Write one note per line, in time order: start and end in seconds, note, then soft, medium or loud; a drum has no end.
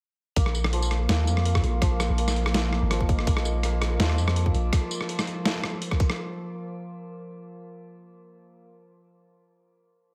0.36 1.08 A#1 loud
0.36 4.69 F3 medium
0.36 1.09 A#3 medium
0.36 4.69 A#3 medium
0.36 4.69 A#4 medium
0.36 2.52 F5 medium
0.36 kick loud
0.36 closed hi-hat medium
0.46 cross-stick medium
0.55 tambourine medium
0.64 cross-stick medium
0.73 1.80 F3 medium
0.73 closed hi-hat medium
0.82 tambourine medium
0.91 cross-stick medium
0.91 closed hi-hat soft
1.09 1.29 D#2 medium
1.09 1.45 A#3 medium
1.09 cross-stick medium
1.09 snare loud
1.09 closed hi-hat medium
1.27 1.63 F2 medium
1.27 tambourine medium
1.37 cross-stick medium
1.45 2.18 A#3 medium
1.45 closed hi-hat medium
1.55 kick medium
1.55 cross-stick medium
1.64 1.80 A#1 loud
1.64 closed hi-hat soft
1.82 2.08 A#1 loud
1.82 2.89 F3 medium
1.82 kick loud
1.82 cross-stick medium
1.82 closed hi-hat medium
2.00 cross-stick medium
2.00 tambourine medium
2.10 2.81 A#1 medium
2.18 2.54 A#3 medium
2.18 closed hi-hat medium
2.28 cross-stick medium
2.28 snare soft
2.28 tambourine medium
2.36 closed hi-hat soft
2.46 cross-stick medium
2.54 3.27 A#3 medium
2.54 4.71 D#5 medium
2.54 snare loud
2.54 closed hi-hat medium
2.73 cross-stick medium
2.82 3.26 G#1 loud
2.91 3.99 F3 medium
2.91 cross-stick medium
2.91 closed hi-hat medium
3.01 kick medium
3.09 kick loud
3.09 closed hi-hat soft
3.19 cross-stick medium
3.27 3.99 A#1 loud
3.27 6.19 F3 medium
3.27 3.63 A#3 medium
3.27 6.19 F4 medium
3.27 kick loud
3.27 closed hi-hat medium
3.37 cross-stick medium
3.45 tambourine medium
3.63 4.36 A#3 medium
3.63 cross-stick medium
3.63 closed hi-hat medium
3.82 cross-stick medium
3.82 closed hi-hat soft
4.00 4.19 D#2 medium
4.00 6.23 F3 medium
4.00 snare loud
4.00 closed hi-hat medium
4.10 cross-stick medium
4.18 4.53 F2 medium
4.18 tambourine medium
4.28 cross-stick medium
4.36 8.65 A#3 medium
4.36 closed hi-hat medium
4.46 kick medium
4.54 4.71 A#1 loud
4.54 closed hi-hat soft
4.73 kick loud
4.73 cross-stick medium
4.73 closed hi-hat medium
4.91 tambourine medium
5.01 cross-stick medium
5.09 closed hi-hat medium
5.19 cross-stick medium
5.19 snare soft
5.19 tambourine medium
5.27 closed hi-hat soft
5.46 cross-stick medium
5.46 snare loud
5.46 closed hi-hat medium
5.64 cross-stick medium
5.82 closed hi-hat medium
5.91 kick medium
5.91 cross-stick medium
6.00 kick loud
6.00 closed hi-hat soft
6.10 cross-stick medium